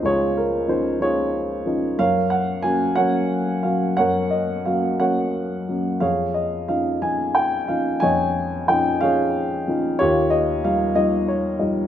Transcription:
<<
  \new Staff \with { instrumentName = "Upright piano" } { \time 6/8 \key des \lydian \tempo 4. = 61 << { des''8 bes'8 c''8 des''4 r8 | f''8 ges''8 aes''8 ges''4 f''8 | ges''8 ees''8 f''8 ges''4 r8 | f''8 ees''8 f''8 aes''8 g''8 f''8 |
aes''4 g''8 f''4 r8 | des''8 ees''8 f''8 ees''8 des''8 ees''8 | } \\ { <f' aes'>4. <f' aes'>4. | <bes' des''>4. <bes' des''>4. | <bes' des''>4. <bes' des''>4. | <aes' des''>4. r4. |
<des'' ees''>4. <aes' des''>4. | <f' g'>4. r4. | } >> }
  \new Staff \with { instrumentName = "Upright piano" } { \time 6/8 \key des \lydian <des, f des' ees'>4 <f des' ees'>8 <f des' ees'>4 <f des' ees'>8 | ges,4 <ges bes des'>8 <ges bes des'>4 <ges bes des'>8 | ges,4 <ges bes des'>8 <ges bes des'>4 <ges bes des'>8 | f,4 <f des' ees'>8 <f des' ees'>4 <f des' ees'>8 |
f,4 <f des' ees'>8 <f des' ees'>4 <f des' ees'>8 | ees,4 <f g ees'>8 <f g ees'>4 <f g ees'>8 | }
>>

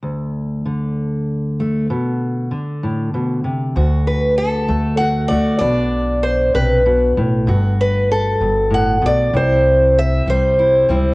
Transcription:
<<
  \new Staff \with { instrumentName = "Steel-string acoustic guitar" } { \time 6/8 \key d \mixolydian \tempo 4. = 65 r2. | r2. | r8 b'8 a'4 fis''8 d''8 | d''4 c''8 b'4 r8 |
r8 b'8 a'4 fis''8 d''8 | c''4 e''8 c''4 r8 | }
  \new Staff \with { instrumentName = "Steel-string acoustic guitar" } { \clef bass \time 6/8 \key d \mixolydian << { r2 r8 a8 | r2. | fis'4. a8 fis'8 <a fis'>8 | d'2. |
fis'2. | e'4. g8 e'8 <g c' e'>8 | } \\ { d,4 d2 | b,4 d8 a,8 b,8 c8 | d,2. | b,4. c8 b,8 a,8 |
g,4. g,8 a,8 b,8 | c2. | } >> }
  \new Staff \with { instrumentName = "Upright bass" } { \clef bass \time 6/8 \key d \mixolydian r2. | r2. | d,4. d,4 d,8 | b,,4. b,,4 b,,8 |
g,,4. g,,4 b,,8 | c,4. c,4 cis,8 | }
>>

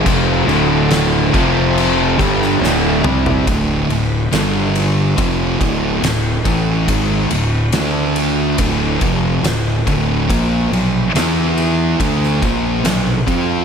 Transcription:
<<
  \new Staff \with { instrumentName = "Distorted electric guitar" } { \clef bass \time 4/4 \key d \minor \tempo 4 = 70 <f, c f>8 <d, a, d>4 <f, c f>4 <g, d g>8 <d, a, d>8 <c g c'>8 | <d, a, d>8 <d, a,>8 <g, d g>4 <f, c f>8 <d, a, d>8 <d, a,>8 <a, e a>8 | <gis, ees gis>8 <d, a,>8 <d a d'>4 <d, a, d>8 <f, c f>8 <d, a,>8 <d, a, d>8 | <bes, f bes>8 <b, fis>8 <e b e'>4 <d a d'>8 <bes, f bes>8 <b, fis>8 <f c' f'>8 | }
  \new Staff \with { instrumentName = "Distorted electric guitar" } { \clef bass \time 4/4 \key d \minor <f, c f>8 <d, a, d>4 <f, c f>4 <g, d g>8 <d, a, d>8 <c g c'>8 | <d, a, d>8 <d, a,>8 <g, d g>4 <f, c f>8 <d, a, d>8 <d, a,>8 <a, e a>8 | <gis, ees gis>8 <d, a,>8 <d a d'>4 <d, a, d>8 <f, c f>8 <d, a,>8 <d, a, d>8 | <bes, f bes>8 <b, fis>8 <e b e'>4 <d a d'>8 <bes, f bes>8 <b, fis>8 <f c' f'>8 | }
  \new Staff \with { instrumentName = "Overdriven electric guitar" } { \clef bass \time 4/4 \key d \minor <f, c f>8 <d, a, d>4 <f, c f>4 <g, d g>8 <d, a, d>8 <c g c'>8 | r1 | r1 | r1 | }
  \new Staff \with { instrumentName = "Fingered electric bass" } { \clef bass \time 4/4 \key d \minor f,,8 d,,4 f,,4 g,,8 d,,8 c,8 | d,,8 d,,8 g,,4 f,,8 d,,8 d,,8 a,,8 | gis,,8 d,,8 d,4 d,,8 f,,8 d,,8 d,,8 | bes,,8 bes,,8 e,4 d,8 bes,,8 bes,,8 f,8 | }
  \new DrumStaff \with { instrumentName = "Drums" } \drummode { \time 4/4 <cymc bd>8 cymc8 <cymc sn>8 <cymc bd>8 cymc8 <cymc bd>16 sn16 sn8 toml16 tomfh16 | <bd cymr>8 cymr8 <cymr sn>8 cymr8 <bd cymr>8 <bd cymr>8 <cymr sn>8 <bd cymr>8 | <bd cymr>8 cymr8 <cymr sn>8 cymr8 <bd cymr>8 <bd cymr>8 <cymr sn>8 <bd cymr>8 | <bd cymr>8 cymr8 <cymr sn>8 cymr8 <bd cymr>16 sn16 <bd cymr>8 <cymr sn>8 <bd cymr>8 | }
>>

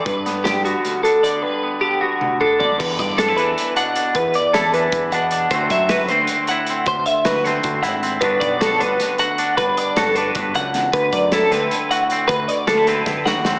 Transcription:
<<
  \new Staff \with { instrumentName = "Clean electric guitar" } { \time 7/8 \key g \major \tempo 4 = 155 b'4 g'8 fis'4 a'8 d''8 | b'4 g'8 fis'4 a'8 d''8 | b'8 d''8 a'8 b'4 fis''4 | b'8 d''8 a'8 b'4 fis''4 |
c''8 e''8 b'8 c''4 fis''4 | c''8 e''8 b'8 c''4 fis''4 | b'8 d''8 a'8 b'4 fis''4 | b'8 d''8 a'8 b'4 fis''4 |
b'8 d''8 a'8 b'4 fis''4 | b'8 d''8 a'8 b'4 fis''4 | }
  \new Staff \with { instrumentName = "Clean electric guitar" } { \time 7/8 \key g \major << { r8 b4 b4 d'4 | r8 b4 b4 d'4 | r4 d'16 e'16 d'4 d'8 d'8 | r4 e'8 d'4 d'8 d'8 |
<d a c' fis'>4 fis'8 c'4 e'8 c'8 | r4 fis'8 c'4 e'8 c'8 | <d b d' fis'>4 fis'8 d'4 fis'8 d'8 | r4 fis'8 d'2 |
r4 e'8 c'4 fis'8 c'8 | r4 d'16 e'16 c'4 fis'8 c'8 | } \\ { g,4 d4 d,4 d8 | g,4 d4 d,4 d8 | e,4. e4 b,4 | e,4. e4 b,4 |
d,4. d4 a,4 | d,4. d2 | g,4. d4 d,4 | g,2 g,8 fis,8 e,8 |
d,4. d4 a,4 | d,4. d4 a,4 | } >> }
  \new Staff \with { instrumentName = "Picked electric bass" } { \clef bass \time 7/8 \key g \major g,2 r4. | r2. r8 | e,8 g,4 e,8 r4. | e,8 r8 e,4 e,8 e,4 |
d,8 fis,4 d,8 r4. | d,8 r8 d,4 d,8 aes,,4 | g,,8 b,,4 g,,8 r4. | g,,8 r8 g,,4 g,,8 cis,4 |
d,8 fis,4 d,8 r4. | d,8 r8 d,4 d,8 ees,4 | }
  \new DrumStaff \with { instrumentName = "Drums" } \drummode { \time 7/8 <hh bd>8 <hh sn>8 <hh sn>8 hh8 hh8 hh8 hh8 | r4 r4 tommh8 toml8 tomfh8 | <cymc bd>8 <hh bd>8 <hh sn>8 hh8 hh8 hh8 hh8 | <hh bd>8 hh8 <hh sn>8 hh8 <hh bd>8 hh8 hh8 |
<hh bd>8 <hh bd sn>8 <hh sn>8 hh8 hh8 hh8 hh8 | <hh bd>8 hh8 <hh sn>8 <hh sn>8 <hh bd>8 <hh sn>8 hh8 | <hh bd>8 <hh bd>8 <hh sn>8 hh8 <hh sn>8 hh8 hh8 | <hh bd>8 hh8 <hh sn>8 hh8 <hh bd>8 hh8 <hh sn>8 |
<hh bd>8 <hh bd>8 <hh sn>8 <hh sn>8 hh8 hh8 hh8 | <hh bd>8 hh8 <hh sn>8 <hh sn>8 <bd sn>8 sn8 sn8 | }
>>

